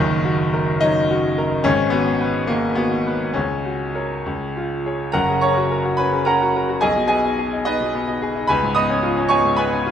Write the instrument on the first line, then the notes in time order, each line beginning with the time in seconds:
grand piano
Already playing: F#1 F#2 D#3
0.25 F#4
0.54 A#4
0.81 F#3 D#4
1.11 F#4
1.38 A#4
1.64 G#1 G#2 C#4
1.90 B3 F#4
2.21 B4
2.47 D#3 A#3
2.75 B3 F#4
3.07 B4
3.33 C#2 C#4
3.65 F#4
3.95 A#4 C#5
4.26 C#2
4.57 F4
4.86 G#4 C#5
5.12 F#1 F#2 A#4 F#5 A#5
5.29 C#3
5.41 C#4 C#5 A#5 C#6
5.57 F#4
5.71 A#4
5.85 F#4
5.97 C#4 B4 B5
6.13 C#3
6.25 C#4 A#4 F#5 A#5
6.42 F#4
6.56 A#4
6.69 F#4
6.81 B1 G#4 D#5 G#5
6.96 B2
7.08 B3 G#4 D#5 G#5
7.25 D#4
7.39 G#4
7.53 D#4
7.65 B3 D#4 B4 D#5
7.81 B2
7.95 B3
8.08 D#4
8.22 G#4
8.36 D#4
8.47 C#2 B4 G#5 B5
8.63 G#2
8.75 B3 D#5 B5 D#6
8.90 C#4
9.03 F4
9.17 C#4
9.29 B3 C#5 G#5 C#6
9.45 G#2
9.57 B3 B4 G#5 B5
9.72 C#4
9.86 F4